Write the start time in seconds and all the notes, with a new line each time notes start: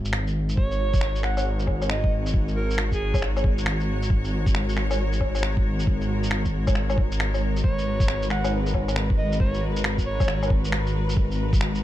Already playing: G#1
0.05 shaker
0.13 finger snap
0.27 shaker
0.49 shaker
0.57 G#1 G#3 F#4 A#4 C#5, kick
0.71 shaker
0.93 kick, shaker
1.01 finger snap
1.16 shaker
1.23 F#5, finger snap
1.37 low woodblock, shaker
1.59 shaker
1.67 kick, low woodblock
1.82 low woodblock, shaker
1.89 D#5, finger snap
2.04 kick
2.26 shaker
2.34 kick
2.48 shaker
2.56 A#4
2.70 shaker
2.78 finger snap
2.91 G#4, kick, shaker
3.14 kick, low woodblock, shaker
3.22 finger snap
3.37 low woodblock, shaker
3.44 kick
3.58 shaker
3.66 finger snap
3.80 shaker
4.02 shaker
4.10 kick
4.24 shaker
4.46 kick, shaker
4.55 finger snap
4.69 shaker
4.77 finger snap
4.91 low woodblock, shaker
5.13 shaker
5.21 kick, low woodblock
5.35 low woodblock, shaker
5.43 finger snap
5.57 kick
5.80 shaker
5.87 kick
6.01 shaker
6.23 shaker
6.31 finger snap
6.45 kick, shaker
6.67 kick, low woodblock, shaker
6.75 finger snap
6.90 low woodblock, shaker
6.98 kick
7.12 shaker
7.20 finger snap
7.34 low woodblock, shaker
7.56 shaker
7.63 G#1 F#4 B4 C#5, kick
7.78 shaker
8.00 kick, shaker
8.08 finger snap
8.22 shaker
8.30 F#5, finger snap
8.44 low woodblock, shaker
8.66 shaker
8.74 kick, low woodblock
8.88 low woodblock, shaker
8.96 finger snap
9.10 kick
9.18 D#5
9.32 shaker
9.40 C#5, kick
9.54 shaker
9.76 shaker
9.84 finger snap
9.98 kick, shaker
10.06 C#5
10.20 kick, low woodblock, shaker
10.28 finger snap
10.43 low woodblock, shaker
10.50 kick
10.65 shaker
10.72 finger snap
10.87 shaker
11.09 shaker
11.17 kick
11.31 shaker
11.53 kick, shaker
11.61 finger snap
11.75 shaker